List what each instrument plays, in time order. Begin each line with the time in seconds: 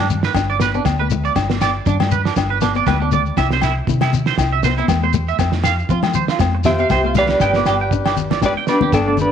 Already playing: fingered electric bass G2
0.10 low conga, shekere
0.23 clean electric guitar B4, snare
0.34 fingered electric bass G1, steel-string acoustic guitar D4, kick, snare, low agogo, shekere
0.50 clean electric guitar D5
0.60 steel-string acoustic guitar B3, clean electric guitar B4, snare, shekere
0.74 steel-string acoustic guitar C4, clean electric guitar D4, shekere
0.85 fingered electric bass D2, steel-string acoustic guitar B3, kick, snare, high conga, low agogo, shekere
0.99 steel-string acoustic guitar A3, clean electric guitar B4
1.10 steel-string acoustic guitar A3, high conga, low conga, shekere
1.25 clean electric guitar D5, shekere
1.35 fingered electric bass G1, steel-string acoustic guitar D4, kick, snare, low agogo, shekere
1.50 steel-string acoustic guitar B3, snare
1.61 clean electric guitar D5, snare, low agogo, shekere
1.86 fingered electric bass G2, steel-string acoustic guitar D4, clean electric guitar D4, kick, low conga, shekere
2.00 snare, high conga, low agogo
2.11 clean electric guitar B4, low conga, shekere
2.25 clean electric guitar D4, snare
2.36 fingered electric bass G1, steel-string acoustic guitar D4, kick, snare, low agogo, shekere
2.50 clean electric guitar B4
2.61 steel-string acoustic guitar B3, clean electric guitar D4, snare, shekere
2.75 steel-string acoustic guitar C4, clean electric guitar D5, shekere
2.86 fingered electric bass D2, steel-string acoustic guitar B3, clean electric guitar B4, kick, snare, high conga, low agogo, shekere
3.02 steel-string acoustic guitar A3, clean electric guitar D4
3.12 steel-string acoustic guitar A3, clean electric guitar D5, high conga, low conga, shekere
3.26 shekere
3.37 fingered electric bass C2, steel-string acoustic guitar E4, clean electric guitar E5, kick, snare, low agogo, shekere
3.51 steel-string acoustic guitar C4, clean electric guitar C5, snare
3.62 clean electric guitar E4, snare, low agogo, shekere
3.87 fingered electric bass C3, steel-string acoustic guitar E4, kick, low conga, shekere
4.01 clean electric guitar E4, snare, high conga, low agogo
4.13 low conga, shekere
4.26 clean electric guitar C5, snare
4.38 fingered electric bass C2, steel-string acoustic guitar E4, kick, snare, low agogo, shekere
4.53 clean electric guitar E5
4.63 steel-string acoustic guitar B3, clean electric guitar C5, snare, shekere
4.78 steel-string acoustic guitar C4, clean electric guitar E4, shekere
4.88 fingered electric bass E2, steel-string acoustic guitar B3, kick, snare, high conga, low agogo, shekere
5.03 steel-string acoustic guitar A3, clean electric guitar C5
5.13 steel-string acoustic guitar A3, high conga, low conga, shekere
5.28 clean electric guitar E5, shekere
5.39 fingered electric bass F2, steel-string acoustic guitar C4, kick, snare, low agogo, shekere
5.52 steel-string acoustic guitar A3, snare
5.64 clean electric guitar F5, snare, low agogo, shekere
5.79 shekere
5.89 fingered electric bass F3, steel-string acoustic guitar C4, clean electric guitar F4, kick, shekere
6.03 snare, high conga, low agogo
6.14 clean electric guitar C5, low conga, shekere
6.28 clean electric guitar F4, snare, shekere
6.39 fingered electric bass F2, steel-string acoustic guitar C4, kick, snare, high conga, low agogo, shekere
6.55 muted clean electric guitar stroke
6.64 steel-string acoustic guitar B3, clean electric guitar F4 G4 E5, trumpet C5, snare, low conga, shekere
6.79 steel-string acoustic guitar C4, clean electric guitar F5, shekere
6.89 fingered electric bass C2, steel-string acoustic guitar B3, clean electric guitar C5, kick, snare, high conga, low agogo, shekere
7.04 steel-string acoustic guitar A3, clean electric guitar F4
7.15 steel-string acoustic guitar A3, clean electric guitar G4 D5 F5, trumpet B4, snare, high conga, low conga, shekere
7.29 snare
7.40 fingered electric bass G1, steel-string acoustic guitar D4, clean electric guitar G5, kick, snare, low agogo, shekere
7.53 steel-string acoustic guitar B3, clean electric guitar D5, snare
7.65 fingered electric bass G1, clean electric guitar G4, snare, low agogo, shekere
7.81 clean electric guitar G5
7.91 steel-string acoustic guitar D4, kick, shekere
8.06 clean electric guitar G4, snare, low agogo
8.17 low conga, shekere
8.31 clean electric guitar D5, snare, high conga
8.42 steel-string acoustic guitar D4, trumpet B4, kick, snare, high conga, low agogo, shekere
8.46 clean electric guitar G4 D5
8.57 clean electric guitar G5
8.67 steel-string acoustic guitar B3, clean electric guitar D4 B4 D5, trumpet G4, snare, shekere
8.81 steel-string acoustic guitar C4, clean electric guitar G4, high conga, low conga
8.92 fingered electric bass G1, steel-string acoustic guitar B3, clean electric guitar D4 A4, trumpet D4, kick, snare, low agogo, shekere
9.07 steel-string acoustic guitar A3, clean electric guitar D5
9.17 steel-string acoustic guitar A3, trumpet G4, low conga, shekere
9.22 clean electric guitar D4 B4